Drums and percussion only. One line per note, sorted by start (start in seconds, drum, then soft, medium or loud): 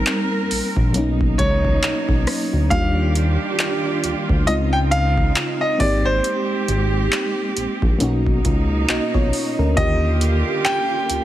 0.07 clap loud
0.07 closed hi-hat medium
0.51 open hi-hat medium
0.77 kick medium
0.94 closed hi-hat medium
1.21 kick loud
1.39 kick loud
1.39 closed hi-hat medium
1.65 kick loud
1.83 clap loud
1.83 closed hi-hat medium
2.09 kick loud
2.27 cross-stick medium
2.27 open hi-hat medium
2.71 kick loud
2.71 closed hi-hat medium
3.15 closed hi-hat medium
3.59 clap loud
3.59 closed hi-hat medium
4.04 closed hi-hat medium
4.29 kick medium
4.47 closed hi-hat medium
4.92 closed hi-hat medium
5.18 kick loud
5.36 clap loud
5.36 closed hi-hat medium
5.80 kick loud
5.80 open hi-hat medium
6.24 closed hi-hat medium
6.68 closed hi-hat medium
7.12 clap loud
7.12 closed hi-hat medium
7.57 closed hi-hat medium
7.82 kick medium
8.00 closed hi-hat medium
8.27 kick medium
8.45 kick loud
8.45 closed hi-hat medium
8.89 clap loud
8.89 closed hi-hat medium
9.14 kick loud
9.33 open hi-hat medium
9.77 kick loud
9.77 closed hi-hat medium
10.21 closed hi-hat medium
10.65 clap loud
10.65 closed hi-hat medium
11.10 closed hi-hat medium